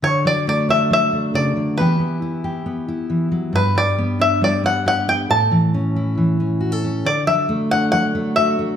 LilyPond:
<<
  \new Staff \with { instrumentName = "Five-string banjo" } { \time 4/4 \key d \major \tempo 4 = 137 cis''8 d''8 d''8 e''8 e''4 d''4 | b'2.~ b'8 r8 | b'8 d''4 e''8 d''8 fis''8 fis''8 g''8 | a''2 r2 |
d''8 e''4 fis''8 fis''4 e''4 | }
  \new Staff \with { instrumentName = "Steel-string acoustic guitar" } { \time 4/4 \key d \major << { r4 a8 d'4 a4. | <b e' g'>4 e'8 g'4 e'4. | r4 b8 d'4 b8 g'8 b8 | r4 cis'8 e'4 cis'8 fis'16 a'16 cis'8 |
r4 a8 d'4 a8 fis'8 a8 | } \\ { d8 fis4. fis4 cis8 d8 | e8 b4. b4 e8 fis8 | g,8 g4. g2 | a,8 e4. e2 |
d8 fis4. fis2 | } >> }
>>